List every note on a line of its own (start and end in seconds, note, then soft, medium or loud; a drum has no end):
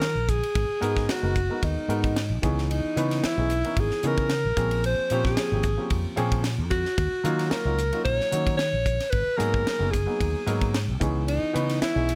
0.00 0.17 D#3 medium
0.00 0.08 F4 soft
0.00 0.30 A#4 loud
0.00 0.09 A#4 soft
0.00 snare loud
0.00 ride medium
0.15 0.40 A#1 medium
0.29 1.11 G#4 medium
0.29 kick medium
0.29 hi-hat pedal medium
0.29 ride medium
0.43 ride medium
0.55 0.68 G#1 medium
0.55 kick medium
0.55 ride medium
0.81 1.06 G#2 medium
0.81 1.19 G#3 medium
0.81 1.19 B3 medium
0.81 1.19 D#4 medium
0.81 1.19 F#4 medium
0.81 1.19 A#4 loud
0.81 hi-hat pedal medium
0.81 ride medium
0.96 kick medium
0.96 snare soft
1.08 1.66 F#4 medium
1.08 muted fingered electric bass stroke soft
1.08 snare loud
1.08 ride medium
1.22 1.48 F#1 medium
1.22 1.34 G#3 medium
1.22 1.34 B3 medium
1.22 1.34 D#4 medium
1.22 1.33 F#4 medium
1.22 1.35 A#4 medium
1.35 1.42 F#4 soft
1.35 1.43 G#4 soft
1.35 kick medium
1.35 hi-hat pedal medium
1.35 ride medium
1.50 1.86 G#3 medium
1.50 1.86 B3 medium
1.50 1.86 D#4 medium
1.50 1.86 F#4 medium
1.50 1.86 A#4 medium
1.63 1.76 D#2 medium
1.63 2.44 D#4 medium
1.63 kick medium
1.63 ride medium
1.77 muted fingered electric bass stroke soft
1.88 2.31 G#2 medium
1.88 2.13 G#3 medium
1.88 2.14 B3 medium
1.88 2.14 D#4 medium
1.88 2.14 F#4 medium
1.88 2.14 A#4 medium
1.88 hi-hat pedal medium
1.88 ride soft
2.04 kick medium
2.04 ride medium
2.16 snare medium
2.16 ride medium
2.30 2.41 B1 medium
2.42 2.80 C#2 medium
2.42 2.92 E3 medium
2.42 2.92 B3 medium
2.42 2.92 C#4 medium
2.42 2.92 D#4 medium
2.42 2.92 G#4 medium
2.42 kick medium
2.42 hi-hat pedal medium
2.42 ride soft
2.58 snare soft
2.71 3.27 D#4 medium
2.71 ride medium
2.96 3.21 C#3 medium
2.96 3.34 E3 medium
2.96 3.34 B3 medium
2.96 3.34 C#4 medium
2.96 3.34 D#4 medium
2.96 3.34 B4 medium
2.96 hi-hat pedal medium
2.96 ride medium
3.11 snare soft
3.11 ride medium
3.24 3.81 E4 medium
3.24 muted fingered electric bass stroke soft
3.24 snare loud
3.24 ride medium
3.37 3.62 B1 medium
3.37 3.49 E3 medium
3.37 3.49 B3 medium
3.37 3.49 C#4 medium
3.37 3.49 D#4 medium
3.37 3.49 G#4 medium
3.50 3.57 D#4 soft
3.50 3.58 B4 soft
3.50 hi-hat pedal medium
3.50 ride medium
3.64 4.00 E3 medium
3.64 4.01 B3 medium
3.64 4.01 C#4 medium
3.64 4.01 D#4 medium
3.64 4.01 A#4 medium
3.64 ride medium
3.77 3.90 G#1 medium
3.77 4.08 G#4 medium
3.77 kick medium
3.77 ride medium
3.91 muted fingered electric bass stroke soft
3.91 snare soft
4.03 4.46 C#3 medium
4.03 4.28 E3 medium
4.03 4.28 B3 medium
4.03 4.28 C#4 medium
4.03 4.29 D#4 medium
4.03 4.29 G#4 medium
4.03 4.86 A#4 medium
4.03 hi-hat pedal medium
4.03 ride soft
4.18 kick medium
4.18 ride medium
4.30 4.37 D#4 soft
4.30 4.38 G#4 soft
4.30 snare medium
4.30 ride medium
4.45 4.56 B1 medium
4.57 4.95 A#1 medium
4.57 5.06 F3 medium
4.57 5.06 A#3 medium
4.57 5.06 C4 medium
4.57 5.06 C#4 medium
4.57 5.07 G#4 medium
4.57 kick medium
4.57 hi-hat pedal medium
4.57 ride medium
4.71 ride medium
4.84 5.23 C5 medium
4.84 ride medium
5.10 5.35 A#2 medium
5.10 5.48 F3 medium
5.10 5.48 A#3 medium
5.10 5.49 C4 medium
5.10 5.49 C#4 medium
5.10 5.49 G4 loud
5.10 hi-hat pedal medium
5.10 ride medium
5.25 6.02 G#4 medium
5.25 kick medium
5.25 snare soft
5.37 muted fingered electric bass stroke soft
5.37 snare loud
5.37 ride medium
5.52 5.76 G#1 medium
5.52 5.64 F3 medium
5.52 5.64 A#3 medium
5.52 5.64 C4 medium
5.52 5.63 C#4 medium
5.52 5.64 G4 medium
5.63 5.71 C#4 soft
5.63 5.72 G#4 soft
5.63 kick medium
5.63 hi-hat pedal medium
5.63 ride medium
5.77 6.14 F3 medium
5.77 6.14 A#3 medium
5.77 6.14 C4 medium
5.77 6.15 C#4 medium
5.77 6.15 G4 medium
5.90 6.04 F2 medium
5.90 kick medium
5.90 ride medium
6.05 muted fingered electric bass stroke soft
6.16 6.60 A#2 medium
6.16 6.42 F3 loud
6.16 6.42 A#3 medium
6.16 6.42 C4 medium
6.16 6.42 C#4 medium
6.16 6.42 G#4 loud
6.16 hi-hat pedal medium
6.16 ride medium
6.32 kick medium
6.32 ride medium
6.44 6.52 C#4 soft
6.44 6.52 G4 soft
6.44 snare medium
6.44 ride medium
6.58 6.83 F2 medium
6.70 7.52 F#4 medium
6.70 kick medium
6.70 hi-hat pedal medium
6.70 ride medium
6.85 snare soft
6.98 7.11 D#2 medium
6.98 kick medium
6.98 ride medium
7.12 muted fingered electric bass stroke soft
7.24 7.49 D#3 medium
7.24 7.62 F#3 medium
7.24 7.62 A#3 medium
7.24 7.62 C#4 medium
7.24 7.62 D#4 medium
7.24 7.63 F4 loud
7.24 hi-hat pedal medium
7.24 ride medium
7.39 snare soft
7.39 ride soft
7.50 8.04 A#4 medium
7.50 muted fingered electric bass stroke soft
7.50 snare loud
7.50 ride medium
7.65 7.90 C#2 medium
7.65 7.78 F#3 medium
7.65 7.78 A#3 medium
7.65 7.78 C#4 medium
7.65 7.78 D#4 medium
7.65 7.78 F4 medium
7.78 7.86 D#4 soft
7.78 7.87 F#4 soft
7.78 hi-hat pedal medium
7.78 ride medium
7.93 8.29 F#3 medium
7.93 8.29 A#3 medium
7.93 8.29 C#4 medium
7.93 8.30 D#4 medium
7.93 8.30 F4 medium
7.93 ride soft
8.04 8.19 A#1 medium
8.04 8.55 C#5 loud
8.04 kick medium
8.04 ride medium
8.20 muted fingered electric bass stroke soft
8.20 snare soft
8.31 8.74 D#3 medium
8.31 8.57 F#3 medium
8.31 8.57 A#3 medium
8.31 8.57 C#4 medium
8.31 8.57 D#4 medium
8.31 8.57 F#4 medium
8.31 hi-hat pedal medium
8.31 ride medium
8.47 kick medium
8.47 ride medium
8.57 8.66 D#4 soft
8.57 8.66 G#4 soft
8.57 9.12 C#5 medium
8.57 snare loud
8.57 ride medium
8.73 8.98 A#1 medium
8.86 kick medium
8.86 hi-hat pedal medium
8.86 ride soft
9.00 snare soft
9.00 ride medium
9.10 9.26 G#1 medium
9.10 9.39 B4 medium
9.10 kick medium
9.10 ride medium
9.27 muted fingered electric bass stroke soft
9.37 9.64 G#2 medium
9.37 9.76 F#3 medium
9.37 9.76 A#3 medium
9.37 9.76 B3 medium
9.37 9.76 D#4 medium
9.37 9.76 G#4 medium
9.37 9.93 A#4 medium
9.37 hi-hat pedal medium
9.37 ride medium
9.54 kick medium
9.66 muted fingered electric bass stroke soft
9.66 snare loud
9.66 ride medium
9.79 10.05 F#1 medium
9.79 9.91 F#3 medium
9.79 9.92 A#3 medium
9.79 9.92 B3 medium
9.79 9.91 D#4 medium
9.79 9.92 G#4 medium
9.91 10.00 D#4 soft
9.91 11.00 G#4 medium
9.91 10.01 G#4 soft
9.91 kick medium
9.91 hi-hat pedal medium
9.91 ride medium
10.06 10.43 F#3 medium
10.06 10.43 A#3 medium
10.06 10.44 B3 medium
10.06 10.44 D#4 medium
10.06 10.44 G#4 medium
10.20 10.34 D#2 medium
10.20 kick medium
10.20 ride medium
10.35 muted fingered electric bass stroke soft
10.46 10.90 G#2 medium
10.46 10.72 F#3 medium
10.46 10.72 A#3 medium
10.46 10.72 B3 medium
10.46 10.71 D#4 medium
10.46 10.72 A#4 medium
10.46 hi-hat pedal medium
10.46 ride medium
10.61 kick medium
10.61 ride medium
10.72 10.80 D#4 soft
10.72 10.81 G#4 soft
10.72 snare loud
10.72 ride medium
10.88 11.00 C2 medium
11.00 11.39 C#2 medium
11.00 11.50 E3 medium
11.00 11.50 B3 medium
11.00 11.50 C#4 medium
11.00 11.50 D#4 medium
11.00 11.50 G#4 medium
11.00 kick medium
11.00 hi-hat pedal medium
11.00 ride medium
11.28 11.78 D#4 medium
11.28 ride medium
11.53 11.79 C#3 medium
11.53 11.91 E3 medium
11.53 11.92 B3 medium
11.53 11.92 C#4 medium
11.53 11.92 D#4 medium
11.53 11.92 B4 medium
11.53 hi-hat pedal medium
11.53 ride medium
11.69 snare soft
11.69 ride medium
11.81 12.15 E4 medium
11.81 muted fingered electric bass stroke soft
11.81 snare loud
11.81 ride medium
11.95 12.15 B1 medium
11.95 12.07 E3 medium
11.95 12.07 B3 medium
11.95 12.07 C#4 medium
11.95 12.06 D#4 medium
11.95 12.07 G#4 medium
12.07 12.15 D#4 soft
12.07 12.15 F#4 soft
12.07 hi-hat pedal medium
12.07 ride medium